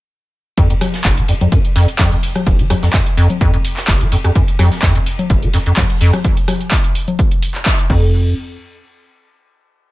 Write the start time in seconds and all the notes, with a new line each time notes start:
0.57 F2, kick, closed hi-hat, ride
0.70 F2, closed hi-hat, ride
0.81 cross-stick, open hi-hat, ride, low conga
0.94 snare, closed hi-hat
1.04 F1, kick, snare, clap, closed hi-hat, ride
1.17 F3, closed hi-hat, ride
1.28 F2, open hi-hat, ride
1.41 F2, closed hi-hat, ride, low conga
1.52 F#2, kick, closed hi-hat, ride
1.65 closed hi-hat
1.76 F2, snare, open hi-hat, ride
1.88 closed hi-hat
1.99 F2, kick, snare, clap, closed hi-hat, open hi-hat, low conga
2.12 F2, closed hi-hat
2.23 open hi-hat, ride
2.36 cross-stick, closed hi-hat, low conga
2.46 F1, kick, closed hi-hat, ride
2.59 F3, closed hi-hat, ride
2.70 F2, cross-stick, open hi-hat, ride, low conga
2.83 F2, snare, closed hi-hat
2.93 F#2, kick, snare, clap, closed hi-hat, ride
3.06 closed hi-hat
3.17 F2, open hi-hat, ride
3.30 closed hi-hat, low conga
3.41 F2, kick, closed hi-hat, ride
3.54 F2, closed hi-hat
3.65 open hi-hat, ride
3.77 snare, clap, closed hi-hat
3.88 F1, kick, snare, clap, closed hi-hat, ride
4.01 F3, closed hi-hat
4.12 F2, open hi-hat, ride
4.24 F2, cross-stick, closed hi-hat
4.35 F#2, kick, closed hi-hat, ride
4.48 closed hi-hat, ride
4.59 F2, cross-stick, open hi-hat, ride, low conga
4.72 snare, closed hi-hat
4.82 F2, kick, snare, clap, closed hi-hat, ride
4.95 F2, closed hi-hat, ride
5.06 open hi-hat, ride
5.19 closed hi-hat, ride, low conga
5.30 F1, kick, closed hi-hat, ride
5.43 F3, closed hi-hat
5.53 F2, snare, open hi-hat, ride
5.66 F2, closed hi-hat
5.77 F#2, kick, snare, clap, closed hi-hat, open hi-hat, low conga
5.90 closed hi-hat
6.01 F2, open hi-hat, ride
6.13 cross-stick, closed hi-hat, low conga
6.24 kick, closed hi-hat
6.37 closed hi-hat
6.48 cross-stick, open hi-hat, low conga
6.61 closed hi-hat
6.71 kick, clap, closed hi-hat
6.84 closed hi-hat
6.95 open hi-hat
7.08 closed hi-hat, low conga
7.19 kick, closed hi-hat
7.31 closed hi-hat
7.42 open hi-hat
7.55 clap, closed hi-hat
7.66 kick, clap, closed hi-hat
7.79 closed hi-hat
7.90 F2, kick, crash